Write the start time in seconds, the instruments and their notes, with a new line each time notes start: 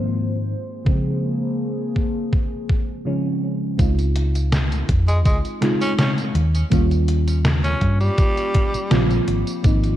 Already playing: fm electric piano G#2 D#3 F3 A#3 C4, ambient pad G#3 F4 C5
0.49 ambient pad A#3 G#4
0.85 fm electric piano C#3 F3 G#3 C4, kick
1.96 kick
2.33 kick
2.69 kick
3.05 fm electric piano C#3 F3 G#3 C#4
3.78 fingered electric bass C#2, fm electric piano G#3 C4 D#4 F4, kick, closed hi-hat, tambourine
3.99 closed hi-hat, tambourine
4.16 closed hi-hat
4.35 closed hi-hat, tambourine
4.52 snare, closed hi-hat, tambourine
4.72 closed hi-hat, tambourine
4.89 fingered electric bass F2, kick, closed hi-hat
5.08 tenor saxophone G#3, closed hi-hat, tambourine
5.25 fingered electric bass C#2, tenor saxophone G#3, kick, closed hi-hat, tambourine
5.45 closed hi-hat, tambourine
5.61 fm electric piano G#3 C4 D#4 F4, snare, closed hi-hat
5.81 tenor saxophone C#4, closed hi-hat, tambourine
5.98 tenor saxophone C#4, snare, closed hi-hat, tambourine
6.18 closed hi-hat, tambourine
6.35 fingered electric bass D#2, closed hi-hat
6.55 closed hi-hat, tambourine
6.70 fingered electric bass D#2, fm electric piano G3 A#3 C#4 F4, kick, closed hi-hat, tambourine
6.91 closed hi-hat, tambourine
7.08 closed hi-hat
7.28 closed hi-hat, tambourine
7.45 snare, closed hi-hat, tambourine
7.64 tenor saxophone C#4, closed hi-hat, tambourine
7.81 fingered electric bass G2, kick, closed hi-hat
8.00 tenor saxophone G3, closed hi-hat, tambourine
8.18 kick, closed hi-hat, tambourine
8.37 closed hi-hat, tambourine
8.54 kick, closed hi-hat
8.74 muted fingered electric bass stroke, closed hi-hat, tambourine
8.90 fingered electric bass A#1, fm electric piano F3 A#3 C4 F4, snare, closed hi-hat, tambourine
9.11 closed hi-hat, tambourine
9.28 fingered electric bass G#1, closed hi-hat
9.47 closed hi-hat, tambourine
9.63 fingered electric bass G#1, fm electric piano F3 A#3 C4 D#4, kick, closed hi-hat, tambourine
9.84 closed hi-hat, tambourine